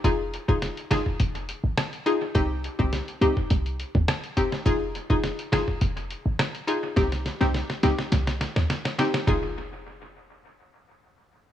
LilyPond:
<<
  \new Staff \with { instrumentName = "Synth pluck" } { \time 4/4 \key f \minor \tempo 4 = 104 <ees' f' aes'>16 r8 <ees' f' aes'>16 r8 <ees' f' aes'>16 r4. r16 <ees' f' aes'>16 r16 | <c' ees' g'>16 r8 <c' ees' g'>16 r8 <c' ees' g'>16 r4. r16 <c' ees' g'>16 r16 | <ees' f' aes'>16 r8 <ees' f' aes'>16 r8 <ees' f' aes'>16 r4. r16 <ees' f' aes'>16 r16 | <c' ees' g'>16 r8 <c' ees' g'>16 r8 <c' ees' g'>16 r4. r16 <c' ees' g'>16 r16 |
<ees' f' aes'>1 | }
  \new Staff \with { instrumentName = "808-style bass" } { \clef bass \time 4/4 \key f \minor f,,8. f,,8 r16 g,,16 r16 f,,8. aes,,16 r4 | c,8. c,8 r16 des,16 r16 c,8. ees,16 r4 | f,,8. f,,8 r16 g,,16 r16 f,,8. aes,,16 r4 | c,8. c,8 r16 des,16 r16 c,8. ees,16 r4 |
f,,1 | }
  \new DrumStaff \with { instrumentName = "Drums" } \drummode { \time 4/4 <hh bd>8 hh16 bd16 <hh sn>16 hh16 <hh ss sn>16 bd16 <hh bd>16 hh16 hh8 <hh ss sn>16 hh16 hh8 | <hh bd>8 hh16 bd16 <hh sn>16 hh16 hh16 bd16 <hh bd>16 hh16 hh16 bd16 <hh ss sn>16 hh16 <hh bd>16 sn16 | <hh bd>8 hh16 bd16 <hh sn>16 hh16 <hh ss sn>16 bd16 <hh bd>16 hh16 hh8 <hh ss sn>16 hh16 hh8 | <hh bd sn>16 <hh sn>16 <hh sn>16 sn16 <hh sn>16 <hh sn>16 <hh sn>16 sn16 <hh sn>16 <hh sn>16 <hh sn>16 sn16 <hh sn>16 <hh sn>16 <hh sn>16 sn16 |
<bd tomfh>4 r4 r4 r4 | }
>>